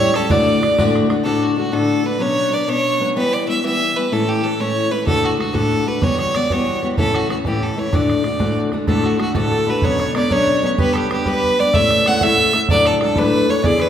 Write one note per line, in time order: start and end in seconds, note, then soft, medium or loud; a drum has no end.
0.00 0.15 A2 medium
0.00 0.14 G3 medium
0.00 0.15 C#4 medium
0.00 0.16 E4 medium
0.00 0.16 G4 loud
0.00 0.93 B4 medium
0.00 0.17 C#5 loud
0.00 0.37 C#5 medium
0.00 1.08 E5 loud
0.14 0.30 G3 medium
0.14 0.30 C#4 medium
0.14 0.30 E4 medium
0.14 0.30 G4 medium
0.14 0.32 A4 medium
0.14 bodhran medium
0.29 0.62 D2 medium
0.29 0.62 A2 loud
0.29 0.61 D3 medium
0.29 0.62 A3 loud
0.29 0.62 D4 medium
0.29 0.63 F#4 loud
0.29 0.94 D5 medium
0.29 2.16 D5 medium
0.29 bodhran medium
0.48 bodhran soft
0.61 0.77 D3 medium
0.61 0.78 A3 medium
0.61 0.77 D4 medium
0.61 0.78 F#4 medium
0.61 bodhran medium
0.77 1.10 D2 loud
0.77 1.10 A2 medium
0.77 1.09 D3 loud
0.77 1.10 A3 loud
0.77 1.10 D4 loud
0.77 1.11 F#4 loud
0.77 bodhran medium
0.86 bodhran soft
0.96 bodhran medium
1.09 1.24 D3 medium
1.09 1.24 A3 medium
1.09 1.24 D4 medium
1.09 1.25 F#4 medium
1.09 bodhran medium
1.24 1.57 D2 medium
1.24 1.57 A2 medium
1.24 1.57 D3 medium
1.24 1.58 A3 medium
1.24 1.57 D4 medium
1.24 1.58 F#4 medium
1.24 1.44 A4 medium
1.43 1.57 F#4 medium
1.58 1.71 D3 medium
1.58 1.72 A3 medium
1.58 1.71 D4 medium
1.58 1.74 F#4 medium
1.58 1.72 F#4 medium
1.72 2.05 D2 medium
1.72 2.05 A2 medium
1.72 2.04 D3 medium
1.72 2.04 A3 medium
1.72 2.04 D4 medium
1.72 2.05 F#4 medium
1.72 2.07 A4 medium
2.05 2.19 D3 medium
2.05 2.19 A3 medium
2.05 2.19 D4 medium
2.05 2.20 F#4 medium
2.05 2.23 B4 medium
2.19 2.52 B2 medium
2.19 2.50 F#3 medium
2.19 2.51 B3 medium
2.19 2.52 C#4 medium
2.19 2.52 D4 medium
2.19 2.55 C#5 loud
2.51 2.67 F#3 medium
2.51 2.67 B3 medium
2.51 2.67 C#4 medium
2.51 2.67 D4 medium
2.51 2.71 D5 medium
2.67 3.00 B2 medium
2.67 2.99 F#3 medium
2.67 2.99 B3 medium
2.67 3.00 C#4 medium
2.67 3.01 D4 medium
2.67 3.05 C#5 loud
3.00 3.15 F#3 medium
3.00 3.15 B3 medium
3.00 3.16 C#4 medium
3.00 3.17 D4 medium
3.16 3.46 E3 medium
3.16 3.47 G3 loud
3.16 3.48 B3 loud
3.16 3.48 E4 medium
3.16 3.35 B4 loud
3.34 3.48 D5 medium
3.47 3.62 E3 medium
3.47 3.63 G3 medium
3.47 3.63 B3 medium
3.47 3.64 E4 medium
3.47 3.63 E5 medium
3.64 3.95 E3 medium
3.64 3.96 G3 medium
3.64 3.96 B3 medium
3.64 3.96 E4 medium
3.64 3.98 E5 loud
3.96 4.11 E3 soft
3.96 4.12 G3 medium
3.96 4.12 B3 medium
3.96 4.12 E4 medium
3.96 4.14 B4 medium
4.12 4.44 A2 medium
4.12 4.42 E3 medium
4.12 4.43 A3 medium
4.12 4.44 C#4 medium
4.12 4.43 E4 medium
4.12 4.30 A4 medium
4.29 4.45 G4 medium
4.43 4.59 E3 medium
4.43 4.59 A3 medium
4.43 4.59 C#4 medium
4.43 4.59 E4 medium
4.43 4.62 A4 medium
4.59 4.92 A2 medium
4.59 4.89 E3 medium
4.59 4.90 A3 medium
4.59 4.91 C#4 medium
4.59 4.91 E4 medium
4.59 4.93 C#5 medium
4.90 5.06 E3 medium
4.90 5.06 A3 medium
4.90 5.07 C#4 medium
4.90 5.07 E4 medium
4.90 5.06 B4 medium
5.06 5.39 D2 medium
5.06 5.39 A2 medium
5.06 5.36 D3 medium
5.06 5.37 A3 medium
5.06 5.39 D4 medium
5.06 5.39 F#4 medium
5.06 5.27 A4 medium
5.06 bodhran medium
5.24 5.38 F#4 medium
5.24 bodhran medium
5.38 5.53 D3 medium
5.38 5.53 A3 medium
5.38 5.53 D4 medium
5.38 5.56 F#4 medium
5.38 5.53 F#4 medium
5.38 bodhran medium
5.53 5.86 D2 medium
5.53 5.86 A2 medium
5.53 5.85 D3 medium
5.53 5.86 A3 medium
5.53 5.86 D4 medium
5.53 5.87 F#4 medium
5.53 5.89 A4 medium
5.53 bodhran medium
5.72 bodhran soft
5.86 6.01 D3 medium
5.86 6.01 A3 medium
5.86 6.01 D4 medium
5.86 6.02 F#4 medium
5.86 6.05 B4 medium
6.01 6.34 E3 medium
6.01 6.34 G3 medium
6.01 6.34 B3 medium
6.01 6.35 F#4 medium
6.01 6.19 C#5 loud
6.01 bodhran medium
6.19 6.37 C#5 medium
6.19 bodhran medium
6.35 6.49 E3 medium
6.35 6.50 G3 medium
6.35 6.50 B3 medium
6.35 6.50 F#4 medium
6.35 6.53 D5 medium
6.35 bodhran medium
6.50 6.81 E3 medium
6.50 6.81 G3 medium
6.50 6.82 B3 medium
6.50 6.83 F#4 medium
6.50 6.87 C#5 medium
6.50 bodhran medium
6.68 bodhran soft
6.82 6.97 E3 medium
6.82 6.98 G3 medium
6.82 6.98 B3 medium
6.82 6.99 F#4 medium
6.98 7.30 A2 medium
6.98 7.28 E3 medium
6.98 7.30 A3 medium
6.98 7.29 C#4 medium
6.98 7.30 E4 medium
6.98 7.17 A4 medium
6.98 bodhran medium
7.14 7.30 F#4 medium
7.14 bodhran medium
7.29 7.45 E3 medium
7.29 7.45 A3 medium
7.29 7.46 C#4 medium
7.29 7.46 E4 medium
7.29 7.38 F#4 medium
7.29 bodhran medium
7.45 7.78 A2 medium
7.45 7.75 E3 medium
7.45 7.76 A3 medium
7.45 7.76 C#4 medium
7.45 7.77 E4 medium
7.45 7.64 G4 medium
7.45 bodhran medium
7.62 7.81 A4 medium
7.62 bodhran soft
7.77 7.93 E3 medium
7.77 7.92 A3 medium
7.77 7.93 C#4 medium
7.77 7.93 E4 medium
7.77 7.96 C#5 medium
7.92 8.25 D2 medium
7.92 8.25 A2 medium
7.92 8.24 D3 medium
7.92 8.24 A3 medium
7.92 8.25 D4 medium
7.92 8.26 F#4 medium
7.92 8.58 D5 medium
7.92 bodhran medium
8.10 bodhran medium
8.24 8.38 D3 medium
8.24 8.39 A3 medium
8.24 8.39 D4 medium
8.24 8.39 F#4 medium
8.24 bodhran medium
8.39 8.72 D2 medium
8.39 8.72 A2 medium
8.39 8.72 D3 medium
8.39 8.72 A3 medium
8.39 8.73 D4 medium
8.39 8.73 F#4 medium
8.39 bodhran medium
8.56 bodhran soft
8.72 8.87 D3 medium
8.72 8.87 A3 medium
8.72 8.87 D4 medium
8.72 8.87 F#4 medium
8.72 bodhran soft
8.87 9.20 D2 medium
8.87 9.20 A2 medium
8.87 9.19 D3 medium
8.87 9.19 A3 medium
8.87 9.21 D4 medium
8.87 9.20 F#4 medium
8.87 9.34 A4 medium
8.87 9.07 A4 medium
8.87 bodhran medium
9.04 9.18 F#4 medium
9.04 9.21 F#4 medium
9.04 bodhran soft
9.18 9.34 D3 medium
9.18 9.34 A3 medium
9.18 9.35 D4 medium
9.18 11.03 F#4 medium
9.18 9.35 F#4 medium
9.18 bodhran medium
9.34 9.68 D2 medium
9.34 9.68 A2 medium
9.34 9.66 D3 medium
9.34 9.67 A3 medium
9.34 9.68 D4 medium
9.34 9.68 F#4 medium
9.34 9.51 A4 medium
9.34 9.71 A4 medium
9.34 bodhran medium
9.51 11.71 A4 medium
9.51 bodhran soft
9.67 9.83 D3 medium
9.67 9.83 A3 medium
9.67 9.83 D4 medium
9.67 9.84 F#4 medium
9.67 10.79 B4 medium
9.67 9.86 B4 medium
9.82 10.16 B2 medium
9.82 10.13 F#3 medium
9.82 10.14 B3 medium
9.82 10.15 C#4 medium
9.82 10.15 D4 medium
9.82 10.00 C#5 medium
9.82 10.16 C#5 medium
9.82 bodhran medium
10.00 10.21 C#5 medium
10.00 bodhran medium
10.15 10.30 F#3 medium
10.15 10.30 B3 medium
10.15 10.30 C#4 medium
10.15 10.31 D4 medium
10.15 10.37 D5 medium
10.15 10.34 D5 medium
10.15 bodhran medium
10.30 10.63 B2 medium
10.30 10.62 F#3 medium
10.30 10.62 B3 medium
10.30 10.63 C#4 medium
10.30 10.63 D4 medium
10.30 11.65 C#5 medium
10.30 10.68 C#5 loud
10.30 bodhran medium
10.47 bodhran soft
10.63 10.77 F#3 medium
10.63 10.77 B3 medium
10.63 10.78 C#4 medium
10.63 10.77 D4 medium
10.78 11.09 G3 medium
10.78 11.10 B3 medium
10.78 11.11 D4 medium
10.78 11.11 G4 loud
10.78 11.25 B4 medium
10.78 10.94 B4 medium
10.78 bodhran medium
10.93 11.11 G4 medium
10.93 10.99 A4 medium
10.93 bodhran medium
10.97 11.11 G4 medium
11.11 11.25 G3 medium
11.11 11.26 B3 medium
11.11 11.27 D4 medium
11.11 12.12 G4 medium
11.11 11.29 G4 medium
11.11 11.27 G4 medium
11.11 bodhran medium
11.26 11.57 G3 medium
11.26 11.58 B3 medium
11.26 11.59 D4 medium
11.26 11.59 G4 medium
11.26 13.16 B4 medium
11.26 11.61 B4 loud
11.26 bodhran medium
11.44 bodhran soft
11.59 11.74 G3 medium
11.59 11.74 B3 medium
11.59 11.75 D4 medium
11.59 11.75 G4 medium
11.59 12.69 D5 medium
11.59 11.76 D5 loud
11.73 12.06 A2 medium
11.73 12.06 A3 medium
11.73 12.07 C#4 medium
11.73 12.07 E4 medium
11.73 12.07 A4 medium
11.73 12.22 E5 medium
11.73 12.09 E5 loud
11.73 bodhran medium
11.91 bodhran medium
12.06 12.22 A3 medium
12.06 12.22 C#4 medium
12.06 12.22 E4 medium
12.06 12.23 A4 medium
12.06 13.66 F#5 medium
12.06 12.24 F#5 loud
12.06 bodhran medium
12.21 12.54 A2 medium
12.21 12.52 A3 medium
12.21 12.53 C#4 medium
12.21 12.54 E4 medium
12.21 12.54 A4 medium
12.21 13.89 E5 medium
12.21 12.58 E5 loud
12.21 bodhran medium
12.38 bodhran soft
12.53 12.69 A3 medium
12.53 12.69 C#4 medium
12.53 12.70 E4 medium
12.53 12.70 A4 medium
12.53 bodhran medium
12.69 13.02 D2 medium
12.69 13.02 A2 medium
12.69 13.00 F#3 medium
12.69 13.02 A3 medium
12.69 13.01 D4 loud
12.69 13.02 A4 loud
12.69 13.55 D5 medium
12.69 12.88 D5 loud
12.69 bodhran medium
12.86 13.02 A4 medium
12.86 13.01 A4 loud
12.86 bodhran medium
13.01 13.17 F#3 medium
13.01 13.17 A3 medium
13.01 13.17 D4 medium
13.01 13.89 A4 medium
13.01 13.18 A4 medium
13.01 13.20 A4 medium
13.01 bodhran medium
13.16 13.49 D2 medium
13.16 13.49 A2 medium
13.16 13.47 F#3 medium
13.16 13.49 A3 medium
13.16 13.48 D4 medium
13.16 13.50 A4 medium
13.16 13.79 B4 medium
13.16 13.51 B4 loud
13.16 bodhran medium
13.33 bodhran soft
13.49 13.63 F#3 medium
13.49 13.64 A3 medium
13.49 13.63 D4 medium
13.49 13.64 A4 medium
13.49 13.69 C#5 medium
13.49 13.67 C#5 medium
13.63 13.89 D3 medium
13.63 13.89 E3 medium
13.63 13.89 B3 medium
13.63 13.89 E4 medium
13.63 13.89 G#4 medium
13.63 13.82 D5 medium
13.63 13.83 D5 loud
13.63 bodhran medium
13.76 13.89 B4 medium
13.76 13.89 C#5 soft
13.76 bodhran medium
13.82 13.89 B4 medium